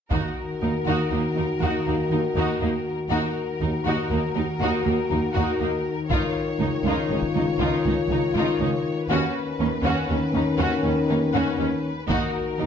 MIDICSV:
0, 0, Header, 1, 8, 480
1, 0, Start_track
1, 0, Key_signature, -6, "minor"
1, 0, Tempo, 499168
1, 105, Time_signature, 12, 3, 24, 8
1, 12176, End_track
2, 0, Start_track
2, 0, Title_t, "Violin section"
2, 0, Program_c, 0, 48
2, 111, Note_on_c, 0, 70, 42
2, 2953, Note_off_c, 0, 70, 0
2, 2988, Note_on_c, 0, 70, 45
2, 5831, Note_off_c, 0, 70, 0
2, 5871, Note_on_c, 0, 73, 47
2, 8711, Note_off_c, 0, 73, 0
2, 8748, Note_on_c, 0, 71, 53
2, 11628, Note_off_c, 0, 71, 0
2, 11634, Note_on_c, 0, 70, 59
2, 12176, Note_off_c, 0, 70, 0
2, 12176, End_track
3, 0, Start_track
3, 0, Title_t, "Viola section"
3, 0, Program_c, 1, 48
3, 114, Note_on_c, 1, 63, 43
3, 333, Note_off_c, 1, 63, 0
3, 604, Note_on_c, 1, 63, 35
3, 680, Note_off_c, 1, 63, 0
3, 847, Note_on_c, 1, 63, 47
3, 1061, Note_off_c, 1, 63, 0
3, 1082, Note_on_c, 1, 63, 30
3, 1158, Note_off_c, 1, 63, 0
3, 1315, Note_on_c, 1, 63, 35
3, 1392, Note_off_c, 1, 63, 0
3, 1560, Note_on_c, 1, 63, 44
3, 1778, Note_off_c, 1, 63, 0
3, 1807, Note_on_c, 1, 63, 36
3, 1884, Note_off_c, 1, 63, 0
3, 2032, Note_on_c, 1, 63, 36
3, 2109, Note_off_c, 1, 63, 0
3, 2285, Note_on_c, 1, 63, 52
3, 2501, Note_off_c, 1, 63, 0
3, 2515, Note_on_c, 1, 63, 40
3, 2592, Note_off_c, 1, 63, 0
3, 2999, Note_on_c, 1, 63, 49
3, 3218, Note_off_c, 1, 63, 0
3, 3476, Note_on_c, 1, 63, 33
3, 3553, Note_off_c, 1, 63, 0
3, 3709, Note_on_c, 1, 63, 43
3, 3933, Note_off_c, 1, 63, 0
3, 3967, Note_on_c, 1, 63, 36
3, 4044, Note_off_c, 1, 63, 0
3, 4212, Note_on_c, 1, 63, 33
3, 4289, Note_off_c, 1, 63, 0
3, 4448, Note_on_c, 1, 63, 50
3, 4663, Note_off_c, 1, 63, 0
3, 4697, Note_on_c, 1, 63, 35
3, 4774, Note_off_c, 1, 63, 0
3, 4928, Note_on_c, 1, 63, 39
3, 5005, Note_off_c, 1, 63, 0
3, 5162, Note_on_c, 1, 63, 46
3, 5379, Note_off_c, 1, 63, 0
3, 5407, Note_on_c, 1, 63, 39
3, 5484, Note_off_c, 1, 63, 0
3, 5891, Note_on_c, 1, 63, 44
3, 6104, Note_off_c, 1, 63, 0
3, 6361, Note_on_c, 1, 63, 35
3, 6438, Note_off_c, 1, 63, 0
3, 6618, Note_on_c, 1, 63, 49
3, 6828, Note_off_c, 1, 63, 0
3, 6844, Note_on_c, 1, 63, 34
3, 6921, Note_off_c, 1, 63, 0
3, 7088, Note_on_c, 1, 63, 37
3, 7165, Note_off_c, 1, 63, 0
3, 7327, Note_on_c, 1, 63, 48
3, 7542, Note_off_c, 1, 63, 0
3, 7573, Note_on_c, 1, 63, 43
3, 7649, Note_off_c, 1, 63, 0
3, 7811, Note_on_c, 1, 63, 44
3, 7888, Note_off_c, 1, 63, 0
3, 8042, Note_on_c, 1, 63, 51
3, 8259, Note_off_c, 1, 63, 0
3, 8277, Note_on_c, 1, 63, 47
3, 8354, Note_off_c, 1, 63, 0
3, 8753, Note_on_c, 1, 61, 53
3, 8974, Note_off_c, 1, 61, 0
3, 9231, Note_on_c, 1, 61, 43
3, 9308, Note_off_c, 1, 61, 0
3, 9462, Note_on_c, 1, 61, 60
3, 9686, Note_off_c, 1, 61, 0
3, 9697, Note_on_c, 1, 61, 43
3, 9774, Note_off_c, 1, 61, 0
3, 9947, Note_on_c, 1, 61, 44
3, 10024, Note_off_c, 1, 61, 0
3, 10183, Note_on_c, 1, 61, 54
3, 10402, Note_off_c, 1, 61, 0
3, 10414, Note_on_c, 1, 61, 48
3, 10491, Note_off_c, 1, 61, 0
3, 10670, Note_on_c, 1, 61, 46
3, 10747, Note_off_c, 1, 61, 0
3, 10905, Note_on_c, 1, 61, 59
3, 11129, Note_off_c, 1, 61, 0
3, 11144, Note_on_c, 1, 61, 52
3, 11221, Note_off_c, 1, 61, 0
3, 11631, Note_on_c, 1, 63, 62
3, 11853, Note_off_c, 1, 63, 0
3, 12116, Note_on_c, 1, 63, 41
3, 12176, Note_off_c, 1, 63, 0
3, 12176, End_track
4, 0, Start_track
4, 0, Title_t, "Violin section"
4, 0, Program_c, 2, 48
4, 107, Note_on_c, 2, 66, 43
4, 330, Note_off_c, 2, 66, 0
4, 605, Note_on_c, 2, 63, 30
4, 682, Note_off_c, 2, 63, 0
4, 834, Note_on_c, 2, 66, 50
4, 1054, Note_off_c, 2, 66, 0
4, 1085, Note_on_c, 2, 58, 31
4, 1162, Note_off_c, 2, 58, 0
4, 1325, Note_on_c, 2, 63, 31
4, 1402, Note_off_c, 2, 63, 0
4, 1556, Note_on_c, 2, 66, 47
4, 1775, Note_off_c, 2, 66, 0
4, 1799, Note_on_c, 2, 58, 34
4, 1876, Note_off_c, 2, 58, 0
4, 2038, Note_on_c, 2, 63, 36
4, 2115, Note_off_c, 2, 63, 0
4, 2286, Note_on_c, 2, 66, 48
4, 2501, Note_off_c, 2, 66, 0
4, 2513, Note_on_c, 2, 58, 35
4, 2590, Note_off_c, 2, 58, 0
4, 2986, Note_on_c, 2, 66, 48
4, 3210, Note_off_c, 2, 66, 0
4, 3470, Note_on_c, 2, 63, 30
4, 3547, Note_off_c, 2, 63, 0
4, 3708, Note_on_c, 2, 66, 47
4, 3932, Note_off_c, 2, 66, 0
4, 3949, Note_on_c, 2, 58, 32
4, 4026, Note_off_c, 2, 58, 0
4, 4188, Note_on_c, 2, 63, 39
4, 4265, Note_off_c, 2, 63, 0
4, 4432, Note_on_c, 2, 66, 49
4, 4654, Note_off_c, 2, 66, 0
4, 4660, Note_on_c, 2, 58, 35
4, 4737, Note_off_c, 2, 58, 0
4, 4903, Note_on_c, 2, 63, 35
4, 4980, Note_off_c, 2, 63, 0
4, 5133, Note_on_c, 2, 66, 49
4, 5364, Note_off_c, 2, 66, 0
4, 5387, Note_on_c, 2, 58, 39
4, 5464, Note_off_c, 2, 58, 0
4, 5869, Note_on_c, 2, 65, 54
4, 6092, Note_off_c, 2, 65, 0
4, 6340, Note_on_c, 2, 63, 35
4, 6417, Note_off_c, 2, 63, 0
4, 6595, Note_on_c, 2, 65, 44
4, 6816, Note_off_c, 2, 65, 0
4, 6836, Note_on_c, 2, 61, 32
4, 6913, Note_off_c, 2, 61, 0
4, 7067, Note_on_c, 2, 63, 33
4, 7144, Note_off_c, 2, 63, 0
4, 7303, Note_on_c, 2, 65, 52
4, 7529, Note_off_c, 2, 65, 0
4, 7550, Note_on_c, 2, 61, 36
4, 7627, Note_off_c, 2, 61, 0
4, 7798, Note_on_c, 2, 63, 42
4, 7875, Note_off_c, 2, 63, 0
4, 8031, Note_on_c, 2, 65, 55
4, 8253, Note_off_c, 2, 65, 0
4, 8270, Note_on_c, 2, 61, 45
4, 8347, Note_off_c, 2, 61, 0
4, 8752, Note_on_c, 2, 66, 62
4, 8974, Note_off_c, 2, 66, 0
4, 9226, Note_on_c, 2, 63, 34
4, 9303, Note_off_c, 2, 63, 0
4, 9466, Note_on_c, 2, 66, 58
4, 9690, Note_off_c, 2, 66, 0
4, 9708, Note_on_c, 2, 61, 45
4, 9784, Note_off_c, 2, 61, 0
4, 9954, Note_on_c, 2, 63, 45
4, 10031, Note_off_c, 2, 63, 0
4, 10187, Note_on_c, 2, 66, 63
4, 10410, Note_off_c, 2, 66, 0
4, 10429, Note_on_c, 2, 61, 43
4, 10506, Note_off_c, 2, 61, 0
4, 10663, Note_on_c, 2, 63, 50
4, 10740, Note_off_c, 2, 63, 0
4, 10894, Note_on_c, 2, 66, 57
4, 11124, Note_off_c, 2, 66, 0
4, 11135, Note_on_c, 2, 61, 49
4, 11212, Note_off_c, 2, 61, 0
4, 11623, Note_on_c, 2, 66, 67
4, 11848, Note_off_c, 2, 66, 0
4, 12102, Note_on_c, 2, 63, 46
4, 12176, Note_off_c, 2, 63, 0
4, 12176, End_track
5, 0, Start_track
5, 0, Title_t, "French horn section"
5, 0, Program_c, 3, 60
5, 105, Note_on_c, 3, 66, 46
5, 119, Note_on_c, 3, 51, 45
5, 2950, Note_off_c, 3, 66, 0
5, 2958, Note_off_c, 3, 51, 0
5, 2999, Note_on_c, 3, 51, 50
5, 3005, Note_on_c, 3, 66, 48
5, 5706, Note_off_c, 3, 66, 0
5, 5870, Note_on_c, 3, 65, 53
5, 8710, Note_off_c, 3, 65, 0
5, 8715, Note_off_c, 3, 51, 0
5, 8764, Note_on_c, 3, 61, 58
5, 8765, Note_on_c, 3, 51, 59
5, 11463, Note_off_c, 3, 51, 0
5, 11463, Note_off_c, 3, 61, 0
5, 11626, Note_on_c, 3, 51, 64
5, 11628, Note_on_c, 3, 66, 70
5, 12176, Note_off_c, 3, 51, 0
5, 12176, Note_off_c, 3, 66, 0
5, 12176, End_track
6, 0, Start_track
6, 0, Title_t, "Cello section"
6, 0, Program_c, 4, 48
6, 108, Note_on_c, 4, 39, 46
6, 185, Note_off_c, 4, 39, 0
6, 605, Note_on_c, 4, 39, 34
6, 682, Note_off_c, 4, 39, 0
6, 845, Note_on_c, 4, 39, 46
6, 922, Note_off_c, 4, 39, 0
6, 1078, Note_on_c, 4, 39, 33
6, 1155, Note_off_c, 4, 39, 0
6, 1315, Note_on_c, 4, 39, 33
6, 1392, Note_off_c, 4, 39, 0
6, 1571, Note_on_c, 4, 39, 45
6, 1648, Note_off_c, 4, 39, 0
6, 1808, Note_on_c, 4, 39, 33
6, 1885, Note_off_c, 4, 39, 0
6, 2047, Note_on_c, 4, 39, 31
6, 2124, Note_off_c, 4, 39, 0
6, 2289, Note_on_c, 4, 39, 44
6, 2366, Note_off_c, 4, 39, 0
6, 2524, Note_on_c, 4, 39, 33
6, 2600, Note_off_c, 4, 39, 0
6, 2996, Note_on_c, 4, 39, 50
6, 3073, Note_off_c, 4, 39, 0
6, 3483, Note_on_c, 4, 39, 35
6, 3560, Note_off_c, 4, 39, 0
6, 3707, Note_on_c, 4, 39, 46
6, 3784, Note_off_c, 4, 39, 0
6, 3946, Note_on_c, 4, 39, 34
6, 4022, Note_off_c, 4, 39, 0
6, 4190, Note_on_c, 4, 39, 34
6, 4267, Note_off_c, 4, 39, 0
6, 4428, Note_on_c, 4, 39, 51
6, 4505, Note_off_c, 4, 39, 0
6, 4666, Note_on_c, 4, 39, 35
6, 4743, Note_off_c, 4, 39, 0
6, 4914, Note_on_c, 4, 39, 36
6, 4991, Note_off_c, 4, 39, 0
6, 5153, Note_on_c, 4, 39, 51
6, 5230, Note_off_c, 4, 39, 0
6, 5396, Note_on_c, 4, 39, 34
6, 5473, Note_off_c, 4, 39, 0
6, 5870, Note_on_c, 4, 37, 49
6, 5947, Note_off_c, 4, 37, 0
6, 6350, Note_on_c, 4, 37, 39
6, 6427, Note_off_c, 4, 37, 0
6, 6594, Note_on_c, 4, 37, 51
6, 6671, Note_off_c, 4, 37, 0
6, 6837, Note_on_c, 4, 37, 37
6, 6914, Note_off_c, 4, 37, 0
6, 7077, Note_on_c, 4, 37, 38
6, 7153, Note_off_c, 4, 37, 0
6, 7323, Note_on_c, 4, 37, 55
6, 7400, Note_off_c, 4, 37, 0
6, 7555, Note_on_c, 4, 37, 37
6, 7632, Note_off_c, 4, 37, 0
6, 7791, Note_on_c, 4, 37, 41
6, 7868, Note_off_c, 4, 37, 0
6, 8037, Note_on_c, 4, 37, 56
6, 8114, Note_off_c, 4, 37, 0
6, 8272, Note_on_c, 4, 37, 39
6, 8349, Note_off_c, 4, 37, 0
6, 8755, Note_on_c, 4, 39, 62
6, 8832, Note_off_c, 4, 39, 0
6, 9233, Note_on_c, 4, 39, 43
6, 9309, Note_off_c, 4, 39, 0
6, 9461, Note_on_c, 4, 39, 56
6, 9538, Note_off_c, 4, 39, 0
6, 9711, Note_on_c, 4, 39, 44
6, 9788, Note_off_c, 4, 39, 0
6, 9934, Note_on_c, 4, 39, 44
6, 10011, Note_off_c, 4, 39, 0
6, 10183, Note_on_c, 4, 39, 62
6, 10260, Note_off_c, 4, 39, 0
6, 10428, Note_on_c, 4, 39, 42
6, 10505, Note_off_c, 4, 39, 0
6, 10676, Note_on_c, 4, 39, 44
6, 10753, Note_off_c, 4, 39, 0
6, 10915, Note_on_c, 4, 39, 60
6, 10992, Note_off_c, 4, 39, 0
6, 11145, Note_on_c, 4, 39, 43
6, 11222, Note_off_c, 4, 39, 0
6, 11624, Note_on_c, 4, 39, 68
6, 11701, Note_off_c, 4, 39, 0
6, 12117, Note_on_c, 4, 39, 51
6, 12176, Note_off_c, 4, 39, 0
6, 12176, End_track
7, 0, Start_track
7, 0, Title_t, "Double bass section"
7, 0, Program_c, 5, 48
7, 113, Note_on_c, 5, 39, 44
7, 190, Note_off_c, 5, 39, 0
7, 595, Note_on_c, 5, 39, 35
7, 672, Note_off_c, 5, 39, 0
7, 822, Note_on_c, 5, 39, 44
7, 899, Note_off_c, 5, 39, 0
7, 1070, Note_on_c, 5, 39, 33
7, 1147, Note_off_c, 5, 39, 0
7, 1312, Note_on_c, 5, 39, 33
7, 1389, Note_off_c, 5, 39, 0
7, 1539, Note_on_c, 5, 39, 50
7, 1616, Note_off_c, 5, 39, 0
7, 1787, Note_on_c, 5, 39, 32
7, 1864, Note_off_c, 5, 39, 0
7, 2020, Note_on_c, 5, 39, 35
7, 2097, Note_off_c, 5, 39, 0
7, 2265, Note_on_c, 5, 39, 46
7, 2342, Note_off_c, 5, 39, 0
7, 2501, Note_on_c, 5, 39, 32
7, 2578, Note_off_c, 5, 39, 0
7, 2977, Note_on_c, 5, 39, 48
7, 3054, Note_off_c, 5, 39, 0
7, 3466, Note_on_c, 5, 39, 36
7, 3543, Note_off_c, 5, 39, 0
7, 3713, Note_on_c, 5, 39, 48
7, 3789, Note_off_c, 5, 39, 0
7, 3954, Note_on_c, 5, 39, 35
7, 4031, Note_off_c, 5, 39, 0
7, 4188, Note_on_c, 5, 39, 32
7, 4265, Note_off_c, 5, 39, 0
7, 4427, Note_on_c, 5, 39, 50
7, 4504, Note_off_c, 5, 39, 0
7, 4663, Note_on_c, 5, 39, 33
7, 4740, Note_off_c, 5, 39, 0
7, 4906, Note_on_c, 5, 39, 38
7, 4983, Note_off_c, 5, 39, 0
7, 5146, Note_on_c, 5, 39, 50
7, 5223, Note_off_c, 5, 39, 0
7, 5380, Note_on_c, 5, 39, 34
7, 5457, Note_off_c, 5, 39, 0
7, 5869, Note_on_c, 5, 37, 50
7, 5946, Note_off_c, 5, 37, 0
7, 6342, Note_on_c, 5, 37, 39
7, 6419, Note_off_c, 5, 37, 0
7, 6571, Note_on_c, 5, 37, 51
7, 6648, Note_off_c, 5, 37, 0
7, 6822, Note_on_c, 5, 37, 37
7, 6899, Note_off_c, 5, 37, 0
7, 7061, Note_on_c, 5, 37, 39
7, 7138, Note_off_c, 5, 37, 0
7, 7295, Note_on_c, 5, 37, 57
7, 7372, Note_off_c, 5, 37, 0
7, 7539, Note_on_c, 5, 37, 38
7, 7616, Note_off_c, 5, 37, 0
7, 7774, Note_on_c, 5, 37, 41
7, 7851, Note_off_c, 5, 37, 0
7, 8023, Note_on_c, 5, 37, 54
7, 8100, Note_off_c, 5, 37, 0
7, 8262, Note_on_c, 5, 37, 38
7, 8339, Note_off_c, 5, 37, 0
7, 8739, Note_on_c, 5, 39, 57
7, 8816, Note_off_c, 5, 39, 0
7, 9230, Note_on_c, 5, 39, 43
7, 9307, Note_off_c, 5, 39, 0
7, 9459, Note_on_c, 5, 39, 61
7, 9536, Note_off_c, 5, 39, 0
7, 9701, Note_on_c, 5, 39, 40
7, 9778, Note_off_c, 5, 39, 0
7, 9942, Note_on_c, 5, 39, 41
7, 10019, Note_off_c, 5, 39, 0
7, 10176, Note_on_c, 5, 39, 65
7, 10253, Note_off_c, 5, 39, 0
7, 10417, Note_on_c, 5, 39, 42
7, 10494, Note_off_c, 5, 39, 0
7, 10667, Note_on_c, 5, 39, 46
7, 10744, Note_off_c, 5, 39, 0
7, 10900, Note_on_c, 5, 39, 60
7, 10977, Note_off_c, 5, 39, 0
7, 11131, Note_on_c, 5, 39, 43
7, 11208, Note_off_c, 5, 39, 0
7, 11615, Note_on_c, 5, 39, 63
7, 11692, Note_off_c, 5, 39, 0
7, 12098, Note_on_c, 5, 39, 46
7, 12174, Note_off_c, 5, 39, 0
7, 12176, End_track
8, 0, Start_track
8, 0, Title_t, "Taiko and cinematic ensemble drums"
8, 104, Note_on_c, 9, 41, 46
8, 200, Note_off_c, 9, 41, 0
8, 5862, Note_on_c, 9, 41, 48
8, 5958, Note_off_c, 9, 41, 0
8, 6943, Note_on_c, 9, 41, 31
8, 7039, Note_off_c, 9, 41, 0
8, 11624, Note_on_c, 9, 41, 50
8, 11720, Note_off_c, 9, 41, 0
8, 12176, End_track
0, 0, End_of_file